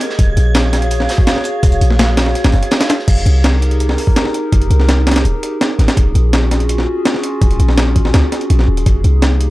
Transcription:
Already playing: G4 G#4 A#4 D#5 G#6
0.01 closed hi-hat
0.10 snare
0.18 D#1 F#4 G#4 C#5 F5, kick, closed hi-hat
0.37 A#1, closed hi-hat
0.55 snare, closed hi-hat
0.73 snare, closed hi-hat
0.82 closed hi-hat
0.91 closed hi-hat
1.00 snare
1.09 snare, closed hi-hat, open hi-hat
1.18 kick
1.27 snare, closed hi-hat
1.36 snare
1.44 closed hi-hat
1.63 D#1, kick, closed hi-hat
1.72 closed hi-hat
1.81 A#1, closed hi-hat
1.91 snare
1.99 snare, closed hi-hat
2.17 snare, closed hi-hat
2.26 snare
2.35 snare, closed hi-hat
2.44 G#1, snare, closed hi-hat
2.52 F#1, snare, closed hi-hat
2.63 closed hi-hat
2.71 snare, closed hi-hat
2.80 snare, closed hi-hat
2.89 snare, closed hi-hat
2.99 snare
3.08 F1 D#4 G4 G#4 A#4, kick, closed hi-hat, crash
3.26 C2, closed hi-hat
3.44 snare, closed hi-hat
3.62 closed hi-hat
3.71 closed hi-hat
3.80 closed hi-hat
3.89 snare
3.98 open hi-hat
4.07 kick
4.16 snare, closed hi-hat
4.25 snare
4.34 closed hi-hat
4.52 F1, kick, closed hi-hat
4.62 closed hi-hat
4.70 C2, closed hi-hat
4.80 snare
4.89 snare, closed hi-hat
5.07 snare, closed hi-hat
5.11 snare, closed hi-hat
5.16 snare, closed hi-hat
5.25 D#1, closed hi-hat
5.43 closed hi-hat
5.61 snare, closed hi-hat
5.79 G#1, snare, closed hi-hat
5.88 snare, closed hi-hat
5.97 D#1 C#4 F4 F#4, kick, closed hi-hat
6.15 A#1, closed hi-hat
6.33 snare, closed hi-hat
6.51 snare, closed hi-hat
6.60 closed hi-hat
6.69 closed hi-hat
6.78 snare
7.05 snare, closed hi-hat
7.14 snare
7.23 closed hi-hat
7.42 D#1, kick, closed hi-hat
7.51 closed hi-hat
7.59 A#1, closed hi-hat
7.68 snare
7.78 snare, closed hi-hat
7.96 kick, closed hi-hat
8.05 snare
8.14 C#2, snare, closed hi-hat
8.32 snare, closed hi-hat
8.41 closed hi-hat
8.50 A#1, closed hi-hat
8.59 snare
8.68 D#1
8.77 closed hi-hat
8.86 F1 A#3 D#4 G4, kick, closed hi-hat
9.04 C2, closed hi-hat
9.22 snare, closed hi-hat
9.41 closed hi-hat

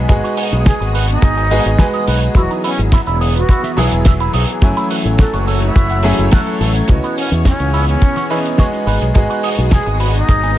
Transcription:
Already playing: B3 F#4 G#4 D#6
0.08 G#1 G#3 B3 D#4 F#4 G#4, kick, closed hi-hat
0.24 F#4, closed hi-hat
0.37 G#4, open hi-hat
0.52 B1, closed hi-hat
0.66 G#4, kick, snare, closed hi-hat
0.81 G#1 G#4, closed hi-hat
0.94 B4, open hi-hat
1.09 D#4, closed hi-hat
1.22 G#1 G#4, kick, closed hi-hat
1.37 G#5, closed hi-hat
1.50 G#3 B3 D#4 F#4 G#4 B4, open hi-hat
1.66 G#1, closed hi-hat
1.78 G#3 B3 D#4 F#4 B4 G#5, kick, snare, closed hi-hat
1.93 G#4, closed hi-hat
2.07 B1 B4, open hi-hat
2.22 closed hi-hat
2.35 E1 E3 F#3 B3 E4 F#4 D#5, kick, closed hi-hat
2.50 D#4, closed hi-hat
2.64 C#4 E4, open hi-hat
2.79 G#1, closed hi-hat
2.92 E4, kick, snare, closed hi-hat
3.06 E1 E4, closed hi-hat
3.21 G#4, open hi-hat
3.36 F#4, closed hi-hat
3.49 E4, kick, closed hi-hat
3.63 E5, snare, closed hi-hat
3.77 B1 F#3 B3 E4 G#4, open hi-hat
3.91 E1, closed hi-hat
4.05 E5, kick, snare, closed hi-hat
4.20 E4, closed hi-hat
4.33 B1 G#4, open hi-hat
4.49 closed hi-hat
4.61 F#1 F#3 A3 C#4 E4 F#4 C#5 G#5, kick, closed hi-hat, shaker
4.77 E4, closed hi-hat, shaker
4.90 F#4, open hi-hat, shaker
5.05 A1, closed hi-hat, shaker
5.18 F#4 A4, kick, snare, closed hi-hat, shaker
5.33 F#1 F#4, closed hi-hat, shaker
5.47 A4, open hi-hat, shaker
5.62 E4, closed hi-hat, shaker
5.75 F#1 F#4, kick, closed hi-hat, shaker
5.90 F#5, closed hi-hat, shaker
6.03 F#3 A3 C#4 E4 G#4 A4, open hi-hat, shaker
6.18 F#1, closed hi-hat, shaker
6.31 F#3 A3 C#4 E4 A4 F#5, kick, snare, closed hi-hat, shaker
6.46 F#4, closed hi-hat, shaker
6.60 A1 A4, open hi-hat, shaker
6.75 closed hi-hat, shaker
6.88 C#2 E3 B3 C#4 F#4 G#4 D#5, kick, closed hi-hat, shaker
7.04 B3, closed hi-hat, shaker
7.17 C#4, open hi-hat, shaker
7.31 E2, closed hi-hat, shaker
7.45 C#4, kick, snare, closed hi-hat, shaker
7.60 C#2 C#4, closed hi-hat, shaker
7.74 E4, open hi-hat, shaker
7.88 C#4, closed hi-hat, shaker
8.01 C#4, kick, closed hi-hat, shaker
8.16 C#5, snare, closed hi-hat, shaker
8.30 E3 B3 C#4 D#4 E4 G#4, open hi-hat, shaker
8.45 closed hi-hat, shaker
8.58 G#3 B3 D#4 F#4 G#4 C#5, kick, snare, closed hi-hat, shaker
8.73 C#4, closed hi-hat, shaker
8.87 G#1 B3 F#4 B4 D#6, open hi-hat, shaker
9.01 B1, closed hi-hat, shaker
9.14 G#1 G#3 B3 D#4 F#4 G#4, kick, closed hi-hat, shaker
9.30 F#4, closed hi-hat, shaker
9.43 G#4, open hi-hat, shaker
9.58 B1, closed hi-hat, shaker
9.71 G#4, kick, snare, closed hi-hat, shaker
9.86 G#1 G#4, closed hi-hat, shaker
10.00 B4, open hi-hat, shaker
10.14 D#4, closed hi-hat, shaker
10.29 G#1 G#4, kick, closed hi-hat, shaker
10.43 G#5, closed hi-hat, shaker

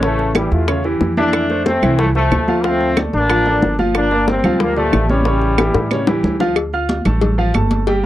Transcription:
Already playing: A1
0.03 C#3 E3 A3 C#4 C#5, high bongo, high conga
0.19 high bongo, high conga
0.35 E3 G3 E4 G4, high bongo, high conga, claves
0.51 E2 A3 F4, high bongo, high conga
0.68 C#3 C#4 C#5, high bongo, high conga, claves
0.84 E3 E4 G4, high bongo, high conga
1.01 F2, high bongo, low bongo, high conga
1.17 E3 A3 D4 E4 E5, high conga
1.33 high bongo, high conga, claves
1.50 A3 A4 C5, high bongo, high conga
1.66 A3 C4, high bongo, high conga
1.82 C2 E3 E4 E5, high bongo, high conga, low conga, claves
1.99 F3 A3, high bongo, high conga
2.15 F3 A3 A4 C5, high bongo, high conga
2.31 D2, high bongo, low bongo, high conga, claves
2.48 F3 F4 F5, high conga
2.64 F3 A3 C4 F4 F5, high bongo, high conga
2.81 high bongo, high conga
2.97 A3 A4 D5, high bongo, high conga, claves
3.13 A1 A#3 D4, high bongo, high conga
3.30 F3 F4 F5, high bongo, high conga, claves
3.46 F3 A4 D5, high bongo, high conga
3.62 G1, high bongo, low bongo, high conga
3.79 F3 F4 F5, high conga
3.95 A#3 D4, high bongo, high conga, claves
4.11 A#3 A#4 D5, high bongo, high conga
4.28 G3 C4, high bongo, high conga
4.44 D2 F3 F4 F5, high bongo, high conga, low conga, claves
4.60 G3 A#3, high bongo, high conga, low conga
4.76 A#2 F3 A3 G4 D5, high bongo, high conga
4.93 A1, high bongo, low bongo, high conga, claves
5.09 C#3 E3 G3 C#4 C#5, high conga
5.25 C#3 C#4 C#5, high bongo, high conga
5.42 high bongo, high conga
5.58 E3 E4 G4, high bongo, high conga, claves
5.75 A2, high bongo
5.91 C#3 C#4 C#5, high conga, claves
6.07 E3 E4 G4, low bongo, low conga
6.23 D2, low conga
6.40 F3 F4 F5, low bongo, low conga
6.56 cowbell, high conga, claves
6.73 F4 F5 F6, high conga
6.89 cowbell, high conga
7.05 A1 A3 A4 A5, cowbell, high conga, low conga, claves
7.21 cowbell, high conga, low conga
7.38 F3 F4 F5, high conga
7.54 G1 A3 A4 A5, cowbell, high conga, claves
7.71 cowbell, high conga
7.87 G3 G4 G5, cowbell, high conga

